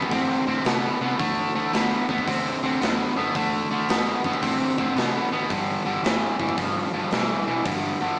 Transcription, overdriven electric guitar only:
0, 0, Header, 1, 2, 480
1, 0, Start_track
1, 0, Tempo, 538600
1, 1063, Time_signature, 4, 2, 24, 8
1, 7302, End_track
2, 0, Start_track
2, 0, Title_t, "Overdriven electric guitar"
2, 0, Program_c, 0, 29
2, 0, Note_on_c, 0, 59, 77
2, 92, Note_off_c, 0, 59, 0
2, 104, Note_on_c, 0, 50, 74
2, 111, Note_on_c, 0, 60, 91
2, 388, Note_off_c, 0, 50, 0
2, 392, Note_off_c, 0, 60, 0
2, 424, Note_on_c, 0, 50, 70
2, 426, Note_on_c, 0, 60, 77
2, 568, Note_off_c, 0, 50, 0
2, 570, Note_off_c, 0, 60, 0
2, 585, Note_on_c, 0, 50, 81
2, 591, Note_on_c, 0, 59, 105
2, 869, Note_off_c, 0, 50, 0
2, 872, Note_off_c, 0, 59, 0
2, 908, Note_on_c, 0, 50, 67
2, 911, Note_on_c, 0, 59, 69
2, 1051, Note_off_c, 0, 50, 0
2, 1052, Note_off_c, 0, 59, 0
2, 1065, Note_on_c, 0, 50, 88
2, 1070, Note_on_c, 0, 57, 105
2, 1349, Note_off_c, 0, 50, 0
2, 1352, Note_off_c, 0, 57, 0
2, 1382, Note_on_c, 0, 50, 73
2, 1386, Note_on_c, 0, 57, 76
2, 1528, Note_off_c, 0, 50, 0
2, 1530, Note_off_c, 0, 57, 0
2, 1542, Note_on_c, 0, 50, 77
2, 1545, Note_on_c, 0, 59, 86
2, 1828, Note_off_c, 0, 50, 0
2, 1830, Note_off_c, 0, 59, 0
2, 1862, Note_on_c, 0, 50, 67
2, 1863, Note_on_c, 0, 59, 81
2, 2008, Note_off_c, 0, 50, 0
2, 2009, Note_off_c, 0, 59, 0
2, 2024, Note_on_c, 0, 50, 78
2, 2032, Note_on_c, 0, 60, 89
2, 2309, Note_off_c, 0, 50, 0
2, 2313, Note_off_c, 0, 60, 0
2, 2344, Note_on_c, 0, 50, 61
2, 2349, Note_on_c, 0, 60, 80
2, 2489, Note_off_c, 0, 50, 0
2, 2492, Note_off_c, 0, 60, 0
2, 2504, Note_on_c, 0, 50, 84
2, 2508, Note_on_c, 0, 59, 93
2, 2789, Note_off_c, 0, 50, 0
2, 2791, Note_off_c, 0, 59, 0
2, 2820, Note_on_c, 0, 50, 78
2, 2828, Note_on_c, 0, 59, 79
2, 2967, Note_off_c, 0, 50, 0
2, 2971, Note_off_c, 0, 59, 0
2, 2987, Note_on_c, 0, 50, 91
2, 2992, Note_on_c, 0, 57, 90
2, 3271, Note_off_c, 0, 50, 0
2, 3273, Note_off_c, 0, 57, 0
2, 3303, Note_on_c, 0, 50, 78
2, 3308, Note_on_c, 0, 57, 77
2, 3449, Note_off_c, 0, 50, 0
2, 3452, Note_off_c, 0, 57, 0
2, 3471, Note_on_c, 0, 50, 77
2, 3475, Note_on_c, 0, 59, 92
2, 3753, Note_off_c, 0, 50, 0
2, 3755, Note_off_c, 0, 59, 0
2, 3789, Note_on_c, 0, 50, 78
2, 3793, Note_on_c, 0, 59, 82
2, 3932, Note_off_c, 0, 50, 0
2, 3934, Note_off_c, 0, 59, 0
2, 3946, Note_on_c, 0, 50, 87
2, 3952, Note_on_c, 0, 60, 89
2, 4230, Note_off_c, 0, 50, 0
2, 4233, Note_off_c, 0, 60, 0
2, 4259, Note_on_c, 0, 50, 70
2, 4263, Note_on_c, 0, 60, 74
2, 4407, Note_off_c, 0, 50, 0
2, 4409, Note_off_c, 0, 60, 0
2, 4420, Note_on_c, 0, 50, 83
2, 4423, Note_on_c, 0, 59, 86
2, 4707, Note_off_c, 0, 50, 0
2, 4708, Note_off_c, 0, 59, 0
2, 4741, Note_on_c, 0, 50, 63
2, 4745, Note_on_c, 0, 59, 64
2, 4888, Note_off_c, 0, 50, 0
2, 4890, Note_off_c, 0, 59, 0
2, 4898, Note_on_c, 0, 43, 86
2, 4905, Note_on_c, 0, 50, 96
2, 5186, Note_off_c, 0, 43, 0
2, 5189, Note_off_c, 0, 50, 0
2, 5220, Note_on_c, 0, 43, 74
2, 5224, Note_on_c, 0, 50, 92
2, 5367, Note_off_c, 0, 43, 0
2, 5369, Note_off_c, 0, 50, 0
2, 5382, Note_on_c, 0, 43, 86
2, 5388, Note_on_c, 0, 52, 91
2, 5667, Note_off_c, 0, 43, 0
2, 5671, Note_off_c, 0, 52, 0
2, 5698, Note_on_c, 0, 43, 69
2, 5699, Note_on_c, 0, 52, 69
2, 5841, Note_off_c, 0, 43, 0
2, 5846, Note_off_c, 0, 52, 0
2, 5852, Note_on_c, 0, 43, 79
2, 5860, Note_on_c, 0, 53, 72
2, 6142, Note_off_c, 0, 43, 0
2, 6147, Note_off_c, 0, 53, 0
2, 6177, Note_on_c, 0, 43, 64
2, 6183, Note_on_c, 0, 53, 70
2, 6325, Note_off_c, 0, 43, 0
2, 6328, Note_off_c, 0, 53, 0
2, 6345, Note_on_c, 0, 43, 88
2, 6349, Note_on_c, 0, 52, 91
2, 6629, Note_off_c, 0, 43, 0
2, 6631, Note_off_c, 0, 52, 0
2, 6657, Note_on_c, 0, 43, 63
2, 6663, Note_on_c, 0, 52, 68
2, 6805, Note_off_c, 0, 43, 0
2, 6808, Note_off_c, 0, 52, 0
2, 6819, Note_on_c, 0, 43, 76
2, 6825, Note_on_c, 0, 50, 98
2, 7105, Note_off_c, 0, 43, 0
2, 7109, Note_off_c, 0, 50, 0
2, 7134, Note_on_c, 0, 43, 76
2, 7136, Note_on_c, 0, 50, 87
2, 7283, Note_off_c, 0, 43, 0
2, 7284, Note_off_c, 0, 50, 0
2, 7302, End_track
0, 0, End_of_file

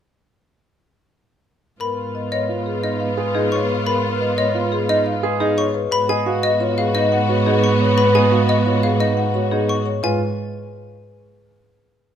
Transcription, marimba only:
0, 0, Header, 1, 2, 480
1, 0, Start_track
1, 0, Tempo, 342857
1, 2530, Time_signature, 6, 2, 24, 8
1, 17011, End_track
2, 0, Start_track
2, 0, Title_t, "Marimba"
2, 0, Program_c, 0, 12
2, 2521, Note_on_c, 0, 70, 73
2, 2839, Note_off_c, 0, 70, 0
2, 3008, Note_on_c, 0, 75, 54
2, 3245, Note_on_c, 0, 73, 68
2, 3321, Note_off_c, 0, 75, 0
2, 3560, Note_off_c, 0, 73, 0
2, 3725, Note_on_c, 0, 68, 54
2, 4040, Note_off_c, 0, 68, 0
2, 4205, Note_on_c, 0, 77, 61
2, 4443, Note_on_c, 0, 71, 58
2, 4520, Note_off_c, 0, 77, 0
2, 4686, Note_on_c, 0, 68, 85
2, 4760, Note_off_c, 0, 71, 0
2, 4927, Note_on_c, 0, 73, 64
2, 5001, Note_off_c, 0, 68, 0
2, 5166, Note_on_c, 0, 71, 59
2, 5241, Note_off_c, 0, 73, 0
2, 5408, Note_on_c, 0, 70, 81
2, 5480, Note_off_c, 0, 71, 0
2, 5721, Note_off_c, 0, 70, 0
2, 5888, Note_on_c, 0, 75, 65
2, 6122, Note_on_c, 0, 73, 79
2, 6201, Note_off_c, 0, 75, 0
2, 6439, Note_off_c, 0, 73, 0
2, 6607, Note_on_c, 0, 68, 73
2, 6921, Note_off_c, 0, 68, 0
2, 7085, Note_on_c, 0, 77, 71
2, 7330, Note_on_c, 0, 71, 75
2, 7400, Note_off_c, 0, 77, 0
2, 7565, Note_on_c, 0, 68, 95
2, 7642, Note_off_c, 0, 71, 0
2, 7804, Note_on_c, 0, 73, 69
2, 7880, Note_off_c, 0, 68, 0
2, 8041, Note_on_c, 0, 71, 68
2, 8120, Note_off_c, 0, 73, 0
2, 8265, Note_off_c, 0, 71, 0
2, 8282, Note_on_c, 0, 71, 101
2, 8528, Note_on_c, 0, 75, 72
2, 8599, Note_off_c, 0, 71, 0
2, 8768, Note_on_c, 0, 77, 76
2, 8841, Note_off_c, 0, 75, 0
2, 9001, Note_on_c, 0, 75, 79
2, 9081, Note_off_c, 0, 77, 0
2, 9244, Note_on_c, 0, 73, 79
2, 9319, Note_off_c, 0, 75, 0
2, 9489, Note_on_c, 0, 68, 69
2, 9560, Note_off_c, 0, 73, 0
2, 9724, Note_on_c, 0, 75, 89
2, 9802, Note_off_c, 0, 68, 0
2, 9966, Note_on_c, 0, 78, 75
2, 10040, Note_off_c, 0, 75, 0
2, 10208, Note_on_c, 0, 73, 62
2, 10281, Note_off_c, 0, 78, 0
2, 10449, Note_on_c, 0, 68, 91
2, 10521, Note_off_c, 0, 73, 0
2, 10687, Note_on_c, 0, 75, 61
2, 10762, Note_off_c, 0, 68, 0
2, 10929, Note_on_c, 0, 73, 68
2, 11001, Note_off_c, 0, 75, 0
2, 11164, Note_on_c, 0, 71, 81
2, 11242, Note_off_c, 0, 73, 0
2, 11480, Note_off_c, 0, 71, 0
2, 11644, Note_on_c, 0, 77, 60
2, 11880, Note_on_c, 0, 75, 82
2, 11960, Note_off_c, 0, 77, 0
2, 12124, Note_on_c, 0, 73, 63
2, 12198, Note_off_c, 0, 75, 0
2, 12363, Note_on_c, 0, 68, 63
2, 12440, Note_off_c, 0, 73, 0
2, 12598, Note_on_c, 0, 75, 82
2, 12680, Note_off_c, 0, 68, 0
2, 12838, Note_on_c, 0, 78, 74
2, 12918, Note_off_c, 0, 75, 0
2, 13079, Note_on_c, 0, 73, 68
2, 13158, Note_off_c, 0, 78, 0
2, 13321, Note_on_c, 0, 68, 84
2, 13398, Note_off_c, 0, 73, 0
2, 13562, Note_on_c, 0, 75, 58
2, 13639, Note_off_c, 0, 68, 0
2, 13801, Note_on_c, 0, 73, 62
2, 13879, Note_off_c, 0, 75, 0
2, 14043, Note_on_c, 0, 71, 89
2, 14119, Note_off_c, 0, 73, 0
2, 14270, Note_off_c, 0, 71, 0
2, 17011, End_track
0, 0, End_of_file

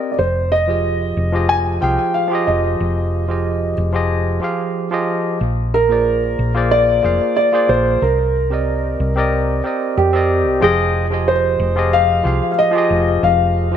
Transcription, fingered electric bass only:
0, 0, Header, 1, 2, 480
1, 0, Start_track
1, 0, Tempo, 652174
1, 140, Time_signature, 4, 2, 24, 8
1, 10134, End_track
2, 0, Start_track
2, 0, Title_t, "Fingered electric bass"
2, 0, Program_c, 0, 33
2, 137, Note_on_c, 0, 29, 88
2, 826, Note_off_c, 0, 29, 0
2, 860, Note_on_c, 0, 29, 86
2, 1308, Note_off_c, 0, 29, 0
2, 1342, Note_on_c, 0, 36, 79
2, 1446, Note_off_c, 0, 36, 0
2, 1821, Note_on_c, 0, 29, 84
2, 2020, Note_off_c, 0, 29, 0
2, 2064, Note_on_c, 0, 29, 92
2, 2749, Note_off_c, 0, 29, 0
2, 2780, Note_on_c, 0, 29, 91
2, 3227, Note_off_c, 0, 29, 0
2, 3981, Note_on_c, 0, 34, 92
2, 4668, Note_off_c, 0, 34, 0
2, 4702, Note_on_c, 0, 34, 88
2, 5148, Note_off_c, 0, 34, 0
2, 5183, Note_on_c, 0, 29, 82
2, 5286, Note_off_c, 0, 29, 0
2, 5661, Note_on_c, 0, 34, 92
2, 5860, Note_off_c, 0, 34, 0
2, 5903, Note_on_c, 0, 36, 97
2, 6589, Note_off_c, 0, 36, 0
2, 6624, Note_on_c, 0, 36, 96
2, 7069, Note_off_c, 0, 36, 0
2, 7342, Note_on_c, 0, 41, 82
2, 7710, Note_off_c, 0, 41, 0
2, 7710, Note_on_c, 0, 36, 84
2, 7801, Note_off_c, 0, 36, 0
2, 7819, Note_on_c, 0, 29, 98
2, 8507, Note_off_c, 0, 29, 0
2, 8535, Note_on_c, 0, 29, 95
2, 8985, Note_off_c, 0, 29, 0
2, 9016, Note_on_c, 0, 36, 79
2, 9123, Note_off_c, 0, 36, 0
2, 9497, Note_on_c, 0, 29, 86
2, 9698, Note_off_c, 0, 29, 0
2, 9736, Note_on_c, 0, 29, 98
2, 10134, Note_off_c, 0, 29, 0
2, 10134, End_track
0, 0, End_of_file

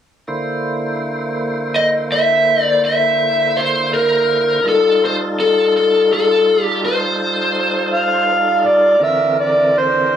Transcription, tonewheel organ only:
0, 0, Header, 1, 2, 480
1, 0, Start_track
1, 0, Tempo, 726392
1, 188, Time_signature, 12, 3, 24, 8
1, 6718, End_track
2, 0, Start_track
2, 0, Title_t, "Tonewheel organ"
2, 0, Program_c, 0, 16
2, 182, Note_on_c, 0, 58, 60
2, 184, Note_on_c, 0, 64, 55
2, 185, Note_on_c, 0, 50, 60
2, 188, Note_on_c, 0, 72, 60
2, 3040, Note_off_c, 0, 58, 0
2, 3041, Note_off_c, 0, 64, 0
2, 3042, Note_off_c, 0, 50, 0
2, 3043, Note_off_c, 0, 72, 0
2, 3061, Note_on_c, 0, 69, 61
2, 3064, Note_on_c, 0, 55, 63
2, 3067, Note_on_c, 0, 63, 60
2, 3067, Note_on_c, 0, 65, 66
2, 5919, Note_off_c, 0, 69, 0
2, 5920, Note_off_c, 0, 55, 0
2, 5922, Note_off_c, 0, 63, 0
2, 5922, Note_off_c, 0, 65, 0
2, 5942, Note_on_c, 0, 70, 65
2, 5943, Note_on_c, 0, 60, 67
2, 5946, Note_on_c, 0, 50, 64
2, 5946, Note_on_c, 0, 52, 65
2, 6718, Note_off_c, 0, 50, 0
2, 6718, Note_off_c, 0, 52, 0
2, 6718, Note_off_c, 0, 60, 0
2, 6718, Note_off_c, 0, 70, 0
2, 6718, End_track
0, 0, End_of_file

